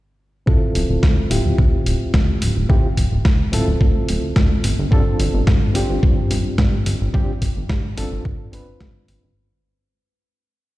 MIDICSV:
0, 0, Header, 1, 4, 480
1, 0, Start_track
1, 0, Tempo, 555556
1, 409, Time_signature, 4, 2, 24, 8
1, 9310, End_track
2, 0, Start_track
2, 0, Title_t, "Reed electric piano"
2, 0, Program_c, 0, 4
2, 398, Note_on_c, 0, 60, 85
2, 405, Note_on_c, 0, 64, 79
2, 410, Note_on_c, 0, 65, 79
2, 417, Note_on_c, 0, 69, 89
2, 1097, Note_off_c, 0, 60, 0
2, 1100, Note_off_c, 0, 64, 0
2, 1103, Note_off_c, 0, 65, 0
2, 1106, Note_off_c, 0, 69, 0
2, 1119, Note_on_c, 0, 60, 66
2, 1125, Note_on_c, 0, 64, 60
2, 1130, Note_on_c, 0, 65, 59
2, 1137, Note_on_c, 0, 67, 70
2, 2297, Note_off_c, 0, 60, 0
2, 2300, Note_off_c, 0, 64, 0
2, 2303, Note_off_c, 0, 65, 0
2, 2306, Note_off_c, 0, 67, 0
2, 2325, Note_on_c, 0, 60, 80
2, 2328, Note_on_c, 0, 64, 76
2, 2330, Note_on_c, 0, 65, 77
2, 2333, Note_on_c, 0, 67, 92
2, 2476, Note_off_c, 0, 60, 0
2, 2477, Note_off_c, 0, 64, 0
2, 2478, Note_off_c, 0, 65, 0
2, 2480, Note_off_c, 0, 67, 0
2, 3040, Note_on_c, 0, 60, 80
2, 3046, Note_on_c, 0, 64, 71
2, 3051, Note_on_c, 0, 65, 70
2, 3057, Note_on_c, 0, 69, 86
2, 3991, Note_off_c, 0, 60, 0
2, 3994, Note_off_c, 0, 64, 0
2, 3997, Note_off_c, 0, 65, 0
2, 3999, Note_off_c, 0, 69, 0
2, 4241, Note_on_c, 0, 60, 90
2, 4247, Note_on_c, 0, 62, 79
2, 4252, Note_on_c, 0, 65, 79
2, 4259, Note_on_c, 0, 69, 98
2, 4938, Note_off_c, 0, 60, 0
2, 4941, Note_off_c, 0, 62, 0
2, 4944, Note_off_c, 0, 65, 0
2, 4947, Note_off_c, 0, 69, 0
2, 4961, Note_on_c, 0, 60, 72
2, 4966, Note_on_c, 0, 62, 63
2, 4972, Note_on_c, 0, 65, 61
2, 4978, Note_on_c, 0, 67, 82
2, 6138, Note_off_c, 0, 60, 0
2, 6140, Note_off_c, 0, 62, 0
2, 6144, Note_off_c, 0, 65, 0
2, 6146, Note_off_c, 0, 67, 0
2, 6164, Note_on_c, 0, 60, 84
2, 6167, Note_on_c, 0, 62, 82
2, 6169, Note_on_c, 0, 65, 75
2, 6173, Note_on_c, 0, 67, 99
2, 6315, Note_off_c, 0, 60, 0
2, 6317, Note_off_c, 0, 62, 0
2, 6318, Note_off_c, 0, 65, 0
2, 6320, Note_off_c, 0, 67, 0
2, 6884, Note_on_c, 0, 60, 82
2, 6887, Note_on_c, 0, 62, 73
2, 6890, Note_on_c, 0, 65, 76
2, 6894, Note_on_c, 0, 69, 87
2, 7344, Note_off_c, 0, 60, 0
2, 7345, Note_off_c, 0, 62, 0
2, 7347, Note_off_c, 0, 65, 0
2, 7349, Note_off_c, 0, 69, 0
2, 7362, Note_on_c, 0, 60, 77
2, 7367, Note_on_c, 0, 62, 69
2, 7374, Note_on_c, 0, 65, 67
2, 7378, Note_on_c, 0, 71, 83
2, 8058, Note_off_c, 0, 60, 0
2, 8061, Note_off_c, 0, 62, 0
2, 8064, Note_off_c, 0, 65, 0
2, 8067, Note_off_c, 0, 71, 0
2, 9310, End_track
3, 0, Start_track
3, 0, Title_t, "Analog synth bass"
3, 0, Program_c, 1, 38
3, 410, Note_on_c, 1, 38, 93
3, 489, Note_off_c, 1, 38, 0
3, 647, Note_on_c, 1, 26, 96
3, 728, Note_off_c, 1, 26, 0
3, 778, Note_on_c, 1, 26, 97
3, 848, Note_off_c, 1, 26, 0
3, 890, Note_on_c, 1, 38, 80
3, 1045, Note_off_c, 1, 38, 0
3, 1129, Note_on_c, 1, 26, 75
3, 1209, Note_off_c, 1, 26, 0
3, 1257, Note_on_c, 1, 26, 94
3, 1327, Note_off_c, 1, 26, 0
3, 1370, Note_on_c, 1, 38, 81
3, 1525, Note_off_c, 1, 38, 0
3, 1610, Note_on_c, 1, 26, 89
3, 1689, Note_off_c, 1, 26, 0
3, 1738, Note_on_c, 1, 38, 43
3, 1827, Note_off_c, 1, 38, 0
3, 1849, Note_on_c, 1, 38, 100
3, 2005, Note_off_c, 1, 38, 0
3, 2092, Note_on_c, 1, 26, 93
3, 2170, Note_off_c, 1, 26, 0
3, 2218, Note_on_c, 1, 26, 101
3, 2288, Note_off_c, 1, 26, 0
3, 2330, Note_on_c, 1, 38, 96
3, 2409, Note_off_c, 1, 38, 0
3, 2569, Note_on_c, 1, 26, 100
3, 2649, Note_off_c, 1, 26, 0
3, 2698, Note_on_c, 1, 26, 99
3, 2768, Note_off_c, 1, 26, 0
3, 2810, Note_on_c, 1, 38, 77
3, 2965, Note_off_c, 1, 38, 0
3, 3049, Note_on_c, 1, 26, 77
3, 3129, Note_off_c, 1, 26, 0
3, 3175, Note_on_c, 1, 26, 97
3, 3246, Note_off_c, 1, 26, 0
3, 3289, Note_on_c, 1, 38, 84
3, 3445, Note_off_c, 1, 38, 0
3, 3529, Note_on_c, 1, 26, 91
3, 3609, Note_off_c, 1, 26, 0
3, 3656, Note_on_c, 1, 38, 42
3, 3746, Note_off_c, 1, 38, 0
3, 3769, Note_on_c, 1, 38, 99
3, 3925, Note_off_c, 1, 38, 0
3, 4010, Note_on_c, 1, 31, 96
3, 4089, Note_off_c, 1, 31, 0
3, 4135, Note_on_c, 1, 31, 107
3, 4206, Note_off_c, 1, 31, 0
3, 4249, Note_on_c, 1, 43, 99
3, 4329, Note_off_c, 1, 43, 0
3, 4488, Note_on_c, 1, 31, 93
3, 4568, Note_off_c, 1, 31, 0
3, 4614, Note_on_c, 1, 31, 97
3, 4686, Note_off_c, 1, 31, 0
3, 4729, Note_on_c, 1, 43, 86
3, 4885, Note_off_c, 1, 43, 0
3, 4967, Note_on_c, 1, 31, 79
3, 5048, Note_off_c, 1, 31, 0
3, 5095, Note_on_c, 1, 31, 91
3, 5166, Note_off_c, 1, 31, 0
3, 5210, Note_on_c, 1, 43, 90
3, 5365, Note_off_c, 1, 43, 0
3, 5448, Note_on_c, 1, 31, 95
3, 5528, Note_off_c, 1, 31, 0
3, 5575, Note_on_c, 1, 43, 44
3, 5666, Note_off_c, 1, 43, 0
3, 5689, Note_on_c, 1, 43, 102
3, 5845, Note_off_c, 1, 43, 0
3, 5927, Note_on_c, 1, 31, 95
3, 6008, Note_off_c, 1, 31, 0
3, 6055, Note_on_c, 1, 31, 105
3, 6126, Note_off_c, 1, 31, 0
3, 6169, Note_on_c, 1, 43, 97
3, 6249, Note_off_c, 1, 43, 0
3, 6409, Note_on_c, 1, 31, 104
3, 6489, Note_off_c, 1, 31, 0
3, 6536, Note_on_c, 1, 31, 97
3, 6607, Note_off_c, 1, 31, 0
3, 6650, Note_on_c, 1, 43, 85
3, 6805, Note_off_c, 1, 43, 0
3, 6890, Note_on_c, 1, 31, 84
3, 6969, Note_off_c, 1, 31, 0
3, 7016, Note_on_c, 1, 31, 97
3, 7087, Note_off_c, 1, 31, 0
3, 7130, Note_on_c, 1, 43, 88
3, 7286, Note_off_c, 1, 43, 0
3, 7369, Note_on_c, 1, 31, 99
3, 7449, Note_off_c, 1, 31, 0
3, 7496, Note_on_c, 1, 43, 43
3, 7586, Note_off_c, 1, 43, 0
3, 7609, Note_on_c, 1, 43, 96
3, 7689, Note_off_c, 1, 43, 0
3, 7849, Note_on_c, 1, 31, 92
3, 7929, Note_off_c, 1, 31, 0
3, 7976, Note_on_c, 1, 31, 101
3, 8047, Note_off_c, 1, 31, 0
3, 9310, End_track
4, 0, Start_track
4, 0, Title_t, "Drums"
4, 409, Note_on_c, 9, 36, 102
4, 495, Note_off_c, 9, 36, 0
4, 650, Note_on_c, 9, 46, 95
4, 736, Note_off_c, 9, 46, 0
4, 889, Note_on_c, 9, 36, 110
4, 889, Note_on_c, 9, 38, 111
4, 975, Note_off_c, 9, 36, 0
4, 975, Note_off_c, 9, 38, 0
4, 1131, Note_on_c, 9, 46, 101
4, 1217, Note_off_c, 9, 46, 0
4, 1369, Note_on_c, 9, 36, 109
4, 1455, Note_off_c, 9, 36, 0
4, 1610, Note_on_c, 9, 46, 98
4, 1697, Note_off_c, 9, 46, 0
4, 1847, Note_on_c, 9, 38, 109
4, 1849, Note_on_c, 9, 36, 109
4, 1934, Note_off_c, 9, 38, 0
4, 1936, Note_off_c, 9, 36, 0
4, 2089, Note_on_c, 9, 46, 97
4, 2176, Note_off_c, 9, 46, 0
4, 2329, Note_on_c, 9, 36, 120
4, 2416, Note_off_c, 9, 36, 0
4, 2569, Note_on_c, 9, 36, 58
4, 2570, Note_on_c, 9, 46, 97
4, 2656, Note_off_c, 9, 36, 0
4, 2656, Note_off_c, 9, 46, 0
4, 2808, Note_on_c, 9, 38, 106
4, 2809, Note_on_c, 9, 36, 118
4, 2894, Note_off_c, 9, 38, 0
4, 2896, Note_off_c, 9, 36, 0
4, 3050, Note_on_c, 9, 46, 100
4, 3136, Note_off_c, 9, 46, 0
4, 3289, Note_on_c, 9, 36, 116
4, 3376, Note_off_c, 9, 36, 0
4, 3529, Note_on_c, 9, 46, 100
4, 3616, Note_off_c, 9, 46, 0
4, 3767, Note_on_c, 9, 38, 114
4, 3769, Note_on_c, 9, 36, 113
4, 3853, Note_off_c, 9, 38, 0
4, 3856, Note_off_c, 9, 36, 0
4, 4008, Note_on_c, 9, 46, 106
4, 4095, Note_off_c, 9, 46, 0
4, 4249, Note_on_c, 9, 36, 113
4, 4336, Note_off_c, 9, 36, 0
4, 4489, Note_on_c, 9, 46, 103
4, 4575, Note_off_c, 9, 46, 0
4, 4727, Note_on_c, 9, 38, 111
4, 4730, Note_on_c, 9, 36, 119
4, 4813, Note_off_c, 9, 38, 0
4, 4816, Note_off_c, 9, 36, 0
4, 4968, Note_on_c, 9, 46, 104
4, 5054, Note_off_c, 9, 46, 0
4, 5209, Note_on_c, 9, 36, 120
4, 5296, Note_off_c, 9, 36, 0
4, 5450, Note_on_c, 9, 46, 108
4, 5536, Note_off_c, 9, 46, 0
4, 5687, Note_on_c, 9, 38, 116
4, 5689, Note_on_c, 9, 36, 124
4, 5773, Note_off_c, 9, 38, 0
4, 5776, Note_off_c, 9, 36, 0
4, 5929, Note_on_c, 9, 46, 107
4, 6015, Note_off_c, 9, 46, 0
4, 6169, Note_on_c, 9, 36, 118
4, 6256, Note_off_c, 9, 36, 0
4, 6409, Note_on_c, 9, 36, 58
4, 6409, Note_on_c, 9, 46, 103
4, 6495, Note_off_c, 9, 46, 0
4, 6496, Note_off_c, 9, 36, 0
4, 6648, Note_on_c, 9, 38, 107
4, 6650, Note_on_c, 9, 36, 125
4, 6734, Note_off_c, 9, 38, 0
4, 6736, Note_off_c, 9, 36, 0
4, 6890, Note_on_c, 9, 46, 109
4, 6977, Note_off_c, 9, 46, 0
4, 7129, Note_on_c, 9, 36, 122
4, 7216, Note_off_c, 9, 36, 0
4, 7371, Note_on_c, 9, 46, 103
4, 7457, Note_off_c, 9, 46, 0
4, 7607, Note_on_c, 9, 38, 110
4, 7609, Note_on_c, 9, 36, 116
4, 7694, Note_off_c, 9, 38, 0
4, 7696, Note_off_c, 9, 36, 0
4, 7849, Note_on_c, 9, 46, 105
4, 7935, Note_off_c, 9, 46, 0
4, 9310, End_track
0, 0, End_of_file